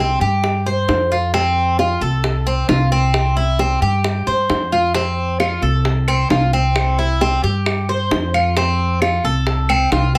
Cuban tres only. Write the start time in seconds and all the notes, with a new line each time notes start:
0.00 C4
0.21 G4
0.66 C5
1.12 F4
1.34 C4
1.79 F4
2.01 A4
2.47 C4
2.69 F4
2.92 C4
3.37 E4
3.59 C4
3.82 G4
4.27 C5
4.72 F4
4.95 C4
5.40 F4
5.62 A4
6.08 C4
6.30 F4
6.53 C4
6.99 E4
7.21 C4
7.44 G4
7.89 C5
8.34 F4
8.57 C4
9.02 F4
9.25 A4
9.70 C4
9.92 F4